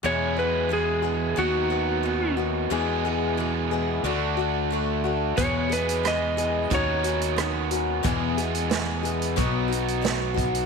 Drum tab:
HH |----------------|----------------|x-xxx-x-x-xxx-x-|x-xxx-xxx-xxx-xx|
SD |----------------|----------------|----r-------r---|----o-------o---|
BD |----------------|----------------|o-------o-------|o-------o-----o-|